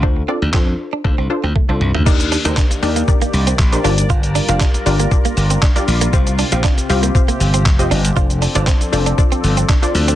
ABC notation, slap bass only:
X:1
M:4/4
L:1/16
Q:1/4=118
K:Gm
V:1 name="Slap bass" clef=bass
D,,2 z D,, F,,2 z2 D,, C,, z D,, z C,, C,, D,, | E,,3 D,, z2 E,,2 z2 C,,2 B,,,2 G,,,2 | z3 F,,, z2 G,,,2 z2 G,,,2 z2 B,,,2 | C,,3 B,,, z2 C,,2 z2 G,,,2 F,,,2 G,,,2 |
z3 G,,, z2 F,,,2 z2 G,,,2 z2 D,,2 |]